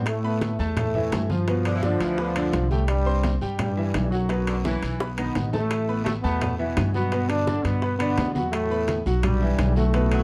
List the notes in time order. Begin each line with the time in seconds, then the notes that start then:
Already playing: A2
0.06 A2 A3, high bongo, high timbale, long guiro
0.24 B3 B4 B5, high conga
0.41 high bongo, high conga, high timbale, short guiro
0.59 E2 A3 A4 A5, high conga, short guiro
0.77 A2 A3, high bongo, high conga, low conga, high timbale, long guiro
0.94 E3 E4 E5, high conga, low conga
1.12 G2, high bongo, low bongo, high conga, high timbale, low timbale, short guiro
1.30 F3 F4 F5, high conga, short guiro
1.47 B2 B3 B4, high bongo, high conga, high timbale, long guiro
1.65 D3, high bongo, high conga, high timbale
1.75 E3
1.83 D3 D4 D5, high bongo, high conga, short guiro
2.00 D2 E3, high bongo, high conga, high timbale, short guiro
2.18 D3 B3 B4 B5, high bongo, high conga, long guiro
2.36 D3 D4 D5, high bongo, high conga, high timbale
2.53 C2, high bongo, low bongo, high conga, high timbale, short guiro
2.70 A2 G3 A3 G4 G5, high conga, short guiro
2.88 G2 G3, high bongo, high timbale, long guiro
3.06 C4 C5 C6, high conga
3.23 high bongo, high conga, high timbale, short guiro
3.41 G2 G3 G4 G5, high conga, short guiro
3.58 G2 G3, high bongo, high conga, low conga, high timbale, long guiro
3.77 E3 E4 E5, high conga
3.94 B1, high bongo, low bongo, high conga, high timbale, short guiro
4.11 F#2 F#3 F#4 F#5, short guiro
4.29 B2 B3 B4, high bongo, high conga, high timbale, long guiro
4.47 D3, high bongo, high conga, high timbale
4.65 E3 E4 E5, high bongo, high conga, short guiro
4.82 B1, high bongo, high conga, high timbale, short guiro
5.00 B3 B4 B5, high bongo, high conga, long guiro
5.17 B2 D#3 B3 D#4 D#5, low bongo, high conga, high timbale
5.35 A1, low bongo, high conga, high timbale, short guiro
5.52 A2 A3 A4 A5, low bongo, high conga, short guiro
5.71 high bongo, high conga, high timbale, long guiro, claves
5.88 B3 B4 B5, high conga
6.04 A2 A3, high bongo, high conga, high timbale, short guiro
6.22 E2 B2 A3 B3 A4 A5, high conga, short guiro
6.41 high bongo, high conga, low conga, high timbale, long guiro, claves
6.58 B2 E3 B3 E4 E5, high conga
6.77 G2, high bongo, low bongo, high conga, high timbale, low timbale, short guiro, claves
6.94 B2 F#3 B3 F#4 F#5, high conga, short guiro
7.12 B2 B3 B4, high bongo, high conga, high timbale, long guiro
7.29 D3 D4, high bongo, high conga, high timbale, claves
7.47 D3 D4 D5, high bongo, high conga, short guiro
7.64 G2 B2 B3, high bongo, high timbale, short guiro
7.82 B3 B4 B5, high bongo, high conga, long guiro
7.99 B2 D3 B3 D4 D5, high bongo, high conga, high timbale, claves
8.18 E2, high bongo, low bongo, high conga, high timbale, low timbale, short guiro
8.34 B2 F#3 B3 F#4 F#5, high conga, short guiro
8.52 A2 A3, high bongo, high conga, high timbale, long guiro, claves
8.71 B3 B4 B5, high conga
8.88 high bongo, high conga, high timbale, short guiro
9.06 B1 F#3 F#4 F#5, high conga, short guiro
9.23 G2 G3, high bongo, high conga, low conga, high timbale, long guiro, claves
9.41 E3 E4 E5, high conga
9.58 B1, high bongo, low bongo, high conga, high timbale, short guiro, claves
9.76 A2 F#3 A3 F#4 F#5, high conga, short guiro
9.94 B2 B3 B4, high bongo, high timbale, long guiro
10.11 F#3, high bongo, high conga, high timbale, claves